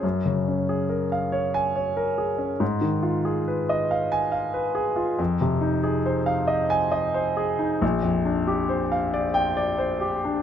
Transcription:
\new Staff \with { instrumentName = "Grand piano" } { \time 6/8 \key aes \dorian \tempo 4. = 46 << { r4. r16 aes''8 r8. | r4. r16 aes''8 r8. | \key f \dorian r4. r16 aes''8 r8. | r4. r16 g''8 r8. | } \\ { ges,16 des16 des'16 aes'16 bes'16 f''16 des''8 des''16 bes'16 aes'16 des'16 | aes,16 ees16 f'16 aes'16 ces''16 ees''16 f''8 f''16 ces''16 aes'16 f'16 | f,16 c16 ees'16 aes'16 c''16 f''16 ees''8 ees''16 c''16 aes'16 ees'16 | bes,,16 f,16 d'16 g'16 c''16 f''16 d''8 d''16 c''16 g'16 d'16 | } >> }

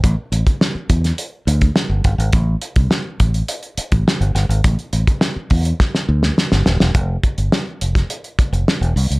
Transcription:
<<
  \new Staff \with { instrumentName = "Fingered electric bass" } { \clef bass \time 4/4 \key c \lydian \tempo 4 = 104 a,,16 r16 a,,16 r8. e,8 r8 d,8 r16 g,,16 g,,16 gis,,16 | a,,8 r16 c,16 r8 a,,8 r8. a,,16 r16 g,,16 g,,16 gis,,16 | a,,16 r16 a,,16 r8. e,8 r8 d,8 r16 g,,16 dis,,16 e,,16 | f,,8 r16 g,,16 r8 f,,8 r8. f,,16 r16 e,,16 c,16 cis,16 | }
  \new DrumStaff \with { instrumentName = "Drums" } \drummode { \time 4/4 <hh bd>8 hh16 <hh bd>16 sn8 <hh bd>16 <hh sn>16 hh8 hh16 <hh bd>16 sn8 <hh bd>16 hh16 | <hh bd>8 hh16 <hh bd>16 sn8 <hh bd>16 hh16 hh16 hh16 hh16 <hh bd>16 sn16 hh16 <hh sn>16 hh16 | <hh bd>16 hh16 hh16 <hh bd>16 sn8 <hho bd>16 hh16 <bd sn>16 sn8 sn16 sn16 sn16 sn16 sn16 | <hh bd>8 <hh bd>16 hh16 sn8 hh16 <hh bd sn>16 hh16 hh16 <hh bd>16 hh16 sn16 hh16 hho16 hh16 | }
>>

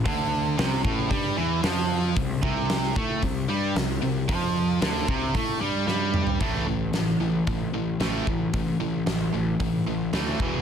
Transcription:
<<
  \new Staff \with { instrumentName = "Distorted electric guitar" } { \clef bass \time 4/4 \key a \minor \tempo 4 = 113 d4 c8 a,8 g8 e8 f4 | c8 c4 a8 c8 g8 c8 c8 | f4 d8 c8 a8 g8 g4 | <a, e a>8 <a, e>8 <a, e>8 <a, e>8 <a, e>8 <a, e>8 <a, e a>8 <a, e>8 |
<a, e>8 <a, e>8 <a, e>8 <a, e>8 <a, e>8 <a, e>8 <a, e a>8 <e, b, e>8 | }
  \new Staff \with { instrumentName = "Overdriven electric guitar" } { \clef bass \time 4/4 \key a \minor d4 c8 a,8 g8 e8 f4 | c8 c4 a8 c8 g8 c8 c8 | f4 d8 c8 a8 g8 g4 | <a, e a>8 <a, e>8 <a, e>8 <a, e>8 <a, e>8 <a, e>8 <a, e a>8 <a, e>8 |
<a, e>8 <a, e>8 <a, e>8 <a, e>8 <a, e>8 <a, e>8 <a, e a>8 <e, b, e>8 | }
  \new Staff \with { instrumentName = "Picked electric bass" } { \clef bass \time 4/4 \key a \minor d,4 c,8 a,,8 g,8 e,8 f,4 | c,8 c,4 a,8 c,8 g,8 c,8 c,8 | f,4 d,8 c,8 a,8 g,8 g,4 | a,,8 a,,8 a,,8 a,,8 a,,8 a,,8 a,,8 a,,8 |
a,,8 a,,8 a,,8 a,,8 a,,8 a,,8 d,8 e,,8 | }
  \new DrumStaff \with { instrumentName = "Drums" } \drummode { \time 4/4 <hho bd>4 <hho sn>16 sn16 bd8 <hho bd>4 <hho sn>4 | <hho bd>8 bd8 <hho sn>16 sn16 <bd sn>8 <hho bd>4 <hho sn>4 | <hho bd>4 <hho sn>8 bd8 <hho bd>4 sn8 toml16 tomfh16 | <hho bd>4 <hho sn>4 <hho bd>4 <hho sn>8 bd8 |
<hho bd>4 <hho sn>4 <hho bd>4 <hho sn>8 bd8 | }
>>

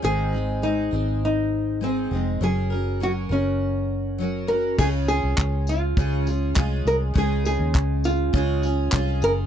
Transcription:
<<
  \new Staff \with { instrumentName = "Nylon-string guitar" } { \time 4/4 \key des \major \tempo 4 = 101 aes'4 ees'4 ees'4 c'8. r16 | aes'4 ges'8 des'2 bes'8 | aes'8 aes'4 f'2 bes'8 | aes'8 aes'4 f'2 bes'8 | }
  \new Staff \with { instrumentName = "Steel-string acoustic guitar" } { \time 4/4 \key des \major <aes, ees aes c' ees' aes'>8 <aes c' ees' aes'>8 <aes c' ees' aes'>8 <aes c' ees' aes'>4. <aes c' ees' aes'>8 <aes c' ees' aes'>8 | <ges des' ges' bes'>8 <des' ges' bes'>8 <ges des' ges' bes'>8 <des' ges' bes'>4. <ges des' ges' bes'>8 <des' ges' bes'>8 | <des aes des' f' aes'>8 <des' f' aes'>4. <des aes des' f' aes'>8 <des' f' aes'>8 <aes des' f' aes'>4 | <des aes des' f' aes'>2 <des aes des' f' aes'>8 <des' f' aes'>8 <aes des' f' aes'>8 <des' f' aes'>8 | }
  \new Staff \with { instrumentName = "Fingered electric bass" } { \clef bass \time 4/4 \key des \major aes,,4. aes,,2 f,,8 | ges,,4. ges,,2~ ges,,8 | des,8. c,16 des,4 des,4 c,8 c,8 | des,8. ees,16 des,4 des,4 c,8 ges,,8 | }
  \new DrumStaff \with { instrumentName = "Drums" } \drummode { \time 4/4 r4 r4 r4 r4 | r4 r4 r4 r4 | <cymc bd>8 tamb8 <hc bd>8 tamb8 bd8 tamb8 <hc bd>8 tamb8 | bd8 tamb8 <hc bd>8 tamb8 bd8 tamb8 <hc bd>8 tamb8 | }
>>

